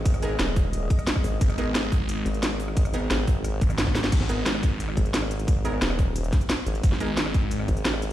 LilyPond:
<<
  \new Staff \with { instrumentName = "Ambient pad" } { \time 4/4 \key gis \minor \tempo 4 = 177 <gis dis' gis' dis''>1~ | <gis dis' gis' dis''>1~ | <gis dis' gis' dis''>1 | r1 |
r1 | r1 | }
  \new Staff \with { instrumentName = "Synth stab" } { \time 4/4 \key gis \minor r8 <b dis' gis' ais'>8 r2. | r8 <b dis' gis' ais'>8 r2. | r8 <b dis' gis' ais'>8 r2. | r8 <b dis' gis' ais'>8 r2. |
r8 <b dis' gis' ais'>8 r2. | r8 <b dis' gis' ais'>8 r2. | }
  \new Staff \with { instrumentName = "Detuned saw bass" } { \clef bass \time 4/4 \key gis \minor r1 | gis,,2~ gis,,8 r4. | r2 r8 gis,,4 gis,,8 | gis,,2~ gis,,8 r4. |
r1 | gis,,2~ gis,,8 r4. | }
  \new Staff \with { instrumentName = "Wobble bass" } { \clef bass \time 4/4 \key gis \minor gis,,4 dis,,4. r4 gis,,8 | r2 r8 gis,,4.~ | gis,,4 gis,,4. r4. | r2 r8 gis,,4.~ |
gis,,4 dis,,4. r4 gis,,8 | r2 r8 gis,,4. | }
  \new DrumStaff \with { instrumentName = "Drums" } \drummode { \time 4/4 <hh bd>16 <hh ss>16 hh8 <hh sn>8 <hho bd>8 hh8 <hh bd>16 <hh ss>16 <hh sn>16 <bd ss>16 hho8 | <hh bd>16 <hh ss>16 hh8 <hh sn>8 <hho bd>8 hh8 hh16 hh16 <hh sn>8 hho16 ss16 | <hh bd>16 <hh ss>16 hh8 <hh sn>8 <hho bd>8 <hh ss>8 <hh bd>16 <hh ss>16 <hh sn>16 <bd sn>16 <hho sn>16 <hh sn>16 | <cymc hh bd>16 sn16 hh8 <hh sn>16 ss16 <hh bd>8 hh16 ss16 <hh bd>16 hh16 <hh sn>16 ss16 hh16 hh16 |
<hh bd>8 hh16 ss16 <hh sn>16 ss16 <hho bd>8 hh16 hh16 <hh bd sn>16 hh16 <hh sn>8 hh16 hh16 | <hh bd>16 sn16 hh8 <hh sn>16 ss16 <hh bd>8 hh16 ss16 <hh bd>16 hh16 <hh sn>16 ss16 hh8 | }
>>